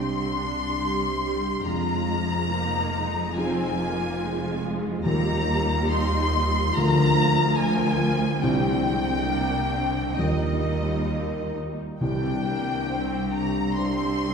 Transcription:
0.00 1.61 C2 soft
0.00 1.62 C2 medium
0.00 1.62 C2 soft
0.00 1.69 C3 soft
0.00 0.77 G3 soft
0.00 1.70 G3 soft
0.00 0.20 C4 soft
0.00 0.36 C4 soft
0.00 1.62 C4 soft
0.00 0.49 D4 soft
0.00 1.62 D4 soft
0.00 0.78 G4 soft
0.00 1.62 G4 soft
0.00 1.65 C6 medium
0.00 1.66 C6 medium
0.22 1.35 C4 soft
0.36 0.79 D4 soft
0.50 1.07 D4 soft
0.78 1.21 G3 medium
0.78 1.66 G4 medium
0.78 1.70 G4 soft
1.08 1.69 D4 soft
1.22 1.65 G3 medium
1.37 3.36 C4 soft
1.65 5.03 F1 soft
1.65 5.03 F2 medium
1.65 5.55 F3 medium
1.65 2.52 G#3 medium
1.65 2.54 F4 soft
1.65 3.34 A#5 medium
1.65 3.38 A#5 medium
1.95 3.08 D#4 soft
2.24 2.80 G#4 soft
2.52 2.96 A#3 medium
2.52 3.38 D#4 medium
2.52 4.20 C5 soft
2.81 3.92 G#4 medium
2.96 3.38 G#3 medium
3.10 3.65 D#4 soft
3.37 3.79 C4 medium
3.37 5.03 C4 soft
3.37 5.10 C4 medium
3.37 5.03 D#4 soft
3.37 5.03 F4 medium
3.37 5.03 G#4 medium
3.37 4.64 G#5 medium
3.37 4.62 G#5 medium
3.66 4.76 D#4 medium
3.80 4.21 A#3 medium
3.94 4.49 G#4 medium
4.21 5.07 G#3 medium
4.21 5.10 C5 medium
4.50 5.10 G#4 medium
4.77 5.34 D#4 medium
5.06 6.73 D#2 medium
5.06 6.80 D#3 medium
5.06 5.48 G3 medium
5.06 6.73 G3 soft
5.06 6.73 F4 soft
5.06 5.91 G4 medium
5.06 6.73 A#4 soft
5.06 5.88 A#5 medium
5.35 6.47 D#4 medium
5.49 6.74 G3 medium
5.63 6.19 G4 medium
5.92 6.75 D#4 medium
5.92 7.31 F4 medium
5.92 6.77 C6 medium
6.21 6.80 G4 medium
6.49 6.80 D#4 medium
6.76 8.40 D2 medium
6.76 8.47 D3 medium
6.76 7.58 F3 medium
6.76 8.40 F3 soft
6.76 8.40 F4 medium
6.76 8.41 A#4 soft
6.76 7.59 A#5 loud
6.76 7.59 A#5 medium
7.04 8.15 F3 medium
7.32 7.86 F4 medium
7.59 8.00 F3 medium
7.59 8.47 A#4 medium
7.59 8.42 G#5 loud
7.59 8.43 G#5 medium
7.87 8.47 F4 medium
8.01 8.43 F3 medium
8.16 8.47 F3 soft
8.42 10.14 C2 medium
8.42 9.69 C3 medium
8.42 10.22 C3 medium
8.42 8.85 G3 medium
8.42 10.14 G3 soft
8.42 9.27 C4 medium
8.42 10.14 D4 soft
8.42 10.14 C5 soft
8.42 10.14 G5 loud
8.42 10.18 G5 medium
8.73 9.87 G3 medium
8.86 9.28 G#3 medium
9.01 9.57 D4 soft
9.28 9.73 A#3 medium
9.28 10.16 D4 medium
9.28 10.22 C5 medium
9.58 10.21 D4 medium
9.72 10.17 C4 medium
9.88 10.46 G3 soft
10.17 11.80 D#2 medium
10.17 11.97 D#2 medium
10.17 12.04 D#3 soft
10.17 11.80 G3 medium
10.17 11.97 G3 soft
10.17 11.77 D#4 medium
10.17 11.98 F4 soft
10.17 11.98 A#4 soft
10.17 11.55 D#5 medium
10.17 11.56 D#5 medium
10.47 11.70 G3 soft
10.78 11.39 F4 soft
11.09 12.05 A#4 soft
11.41 12.05 F4 soft
11.72 12.30 G3 soft
12.01 14.34 C2 medium
12.01 13.30 C3 medium
12.01 14.34 C3 medium
12.01 12.43 G3 medium
12.01 12.87 D4 medium
12.01 13.30 G5 medium
12.01 13.31 G5 medium
12.31 13.48 G3 soft
12.47 12.91 A#3 medium
12.61 13.18 D4 soft
12.91 13.35 C4 medium
12.91 14.34 C5 medium
13.20 14.34 D4 soft
13.33 13.77 G3 medium
13.33 13.77 A#5 medium
13.33 13.78 A#5 medium
13.49 14.05 G3 soft
13.78 14.34 G3 medium
13.78 14.34 G3 soft
13.78 14.34 C4 medium
13.78 14.34 D4 medium
13.78 14.34 C5 soft
13.78 14.34 C6 medium
14.06 14.34 G3 soft

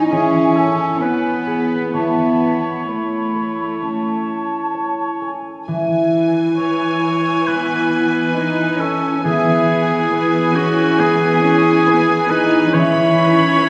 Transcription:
0.00 0.11 E3 soft
0.00 1.90 E4 soft
0.00 1.00 C#5 soft
0.00 1.64 G#5 soft
0.12 1.93 E3 soft
0.12 1.02 C#4 medium
0.12 0.58 G#4 soft
0.56 1.03 A4 soft
1.00 1.92 B3 soft
1.00 1.93 B4 soft
1.00 2.87 C#5 soft
1.47 1.98 G#4 soft
1.94 5.67 E3 soft
1.94 2.87 B3 soft
1.94 5.31 E4 soft
1.94 5.31 C#5 soft
1.94 2.78 A5 soft
2.88 4.75 A3 soft
2.88 4.73 C#5 soft
2.88 3.77 B5 soft
3.35 5.20 A4 soft
3.81 5.72 C#4 soft
3.81 5.21 A5 soft
4.74 5.72 C#5 soft
5.21 5.72 A4 soft
5.21 5.68 G#5 soft
5.68 9.23 E3 soft
5.68 9.21 E3 soft
5.68 9.21 G#5 soft
6.57 8.35 B4 soft
6.57 7.49 C#5 medium
7.03 10.93 G#5 soft
7.47 10.98 B3 soft
7.47 8.33 B3 soft
7.47 8.82 B4 medium
8.36 8.81 D#4 soft
8.36 10.11 B4 soft
8.80 9.24 C#4 soft
8.80 9.24 A4 medium
9.24 12.72 E3 soft
9.24 12.70 E3 medium
9.24 10.10 B3 soft
9.24 10.57 G#4 medium
9.24 12.70 G#5 soft
10.12 10.54 B3 soft
10.12 11.86 B4 soft
10.55 10.99 C#4 soft
10.55 11.01 F#4 medium
10.55 12.29 G#4 soft
10.98 11.43 B3 soft
10.98 13.69 B3 soft
10.98 12.32 G#4 medium
11.42 11.87 C#4 soft
11.86 12.30 B3 soft
11.86 13.60 B4 soft
12.30 12.74 D#4 medium
12.30 12.77 G#4 soft
12.30 12.76 B4 medium
12.73 13.69 E3 soft
12.73 13.69 E3 medium
12.73 13.69 C#4 soft
12.73 13.69 C#5 medium
12.73 13.69 B5 medium
13.18 13.69 D#4 soft
13.62 13.69 B4 soft

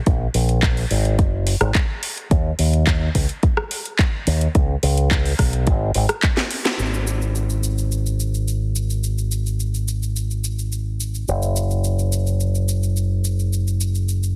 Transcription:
0.06 0.26 A#1 medium
0.06 kick loud
0.06 closed hi-hat medium
0.34 0.83 A#1 medium
0.34 open hi-hat loud
0.49 closed hi-hat medium
0.62 kick loud
0.62 clap loud
0.62 closed hi-hat medium
0.77 open hi-hat medium
0.91 1.19 G#1 medium
0.91 open hi-hat loud
1.05 closed hi-hat medium
1.19 1.54 F#1 medium
1.19 kick loud
1.19 closed hi-hat medium
1.47 open hi-hat loud
1.61 1.70 G#1 loud
1.61 cross-stick medium
1.61 closed hi-hat medium
1.75 kick loud
1.75 clap loud
1.75 closed hi-hat medium
2.03 open hi-hat loud
2.17 closed hi-hat medium
2.31 2.50 D#2 loud
2.31 kick loud
2.31 closed hi-hat medium
2.59 3.08 D#2 medium
2.59 open hi-hat loud
2.73 closed hi-hat medium
2.87 kick loud
2.87 clap loud
2.87 closed hi-hat medium
3.15 3.25 C#2 medium
3.15 kick medium
3.15 open hi-hat loud
3.29 closed hi-hat medium
3.43 kick loud
3.43 closed hi-hat medium
3.57 cross-stick medium
3.71 open hi-hat loud
3.86 closed hi-hat medium
3.99 kick loud
3.99 clap loud
3.99 closed hi-hat medium
4.27 4.46 D#2 medium
4.27 open hi-hat loud
4.41 closed hi-hat medium
4.55 4.74 C#2 loud
4.55 kick loud
4.55 closed hi-hat medium
4.83 5.32 C#2 loud
4.83 open hi-hat loud
4.98 closed hi-hat medium
5.11 kick loud
5.11 clap loud
5.11 closed hi-hat medium
5.25 open hi-hat medium
5.39 5.69 B1 medium
5.39 kick medium
5.39 cross-stick medium
5.39 open hi-hat loud
5.53 closed hi-hat medium
5.67 5.94 G#1 medium
5.67 kick loud
5.67 closed hi-hat medium
5.94 6.05 G#1 medium
5.94 open hi-hat loud
6.09 cross-stick medium
6.09 closed hi-hat medium
6.23 kick loud
6.23 clap loud
6.23 closed hi-hat medium
6.37 snare medium
6.51 open hi-hat loud
6.65 snare medium
6.65 closed hi-hat medium
6.79 11.25 G#1 medium
6.79 cabasa soft
6.94 cabasa soft
7.07 cabasa medium
7.22 cabasa soft
7.35 cabasa soft
7.50 cabasa soft
7.63 cabasa medium
7.78 cabasa soft
7.92 cabasa soft
8.06 cabasa soft
8.20 cabasa medium
8.34 cabasa soft
8.48 cabasa soft
8.76 cabasa medium
8.90 cabasa soft
9.04 cabasa soft
9.18 cabasa soft
9.32 cabasa medium
9.46 cabasa soft
9.60 cabasa soft
9.74 cabasa soft
9.88 cabasa medium
10.03 cabasa soft
10.16 cabasa soft
10.31 cabasa soft
10.44 cabasa medium
10.59 cabasa soft
10.72 cabasa soft
11.00 cabasa medium
11.14 cabasa soft
11.28 14.36 F#1 medium
11.28 cabasa soft
11.42 cabasa soft
11.56 cabasa medium
11.71 cabasa soft
11.84 cabasa soft
11.99 cabasa soft
12.12 cabasa medium
12.27 cabasa soft
12.40 cabasa soft
12.55 cabasa soft
12.69 cabasa medium
12.83 cabasa soft
12.97 cabasa soft
13.25 cabasa medium
13.39 cabasa soft
13.53 cabasa soft
13.67 cabasa soft
13.81 cabasa medium
13.95 cabasa soft
14.09 cabasa soft
14.23 cabasa soft

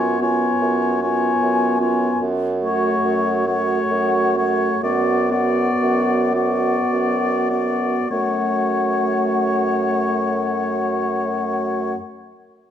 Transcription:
0.00 0.52 F#2 soft
0.00 0.20 B3 soft
0.00 0.20 F4 soft
0.00 0.21 C#5 soft
0.00 0.21 G#5 soft
0.20 0.99 B3 soft
0.20 1.00 F4 soft
0.20 1.00 C#5 soft
0.20 1.00 G#5 soft
0.62 1.32 F#2 soft
1.02 1.79 B3 soft
1.02 1.79 F4 soft
1.02 1.79 C#5 soft
1.02 1.79 G#5 soft
1.42 2.11 F#2 soft
1.80 2.20 B3 soft
1.80 2.20 F4 soft
1.80 2.20 C#5 soft
1.80 2.20 G#5 soft
2.22 2.94 F#2 soft
2.62 3.45 A3 soft
2.62 3.45 F#4 soft
2.62 3.45 C#5 soft
2.62 3.45 F#5 soft
3.05 3.80 F#2 soft
3.47 4.35 A3 soft
3.47 4.34 F#4 soft
3.47 4.35 C#5 soft
3.47 4.35 F#5 soft
3.91 4.72 F#2 soft
4.37 4.82 A3 soft
4.37 4.82 F#4 soft
4.37 4.82 C#5 soft
4.37 4.82 F#5 soft
4.83 5.70 F#2 soft
4.83 5.30 B3 soft
4.83 5.30 F#4 soft
4.83 5.30 D5 soft
4.83 5.30 F#5 soft
5.31 6.33 B3 soft
5.31 6.33 F#4 soft
5.31 6.33 D5 soft
5.31 6.33 F#5 soft
5.83 6.78 F#2 soft
6.35 7.49 B3 soft
6.35 7.49 F#4 soft
6.35 7.49 D5 soft
6.35 7.49 F#5 soft
6.93 7.98 F#2 soft
7.50 8.10 B3 soft
7.50 8.10 F#4 soft
7.50 8.10 D5 soft
7.50 8.11 F#5 soft
8.11 11.96 F#2 soft
8.11 11.95 A3 soft
8.11 11.96 F#4 soft
8.11 11.95 C#5 soft
8.11 11.97 F#5 soft

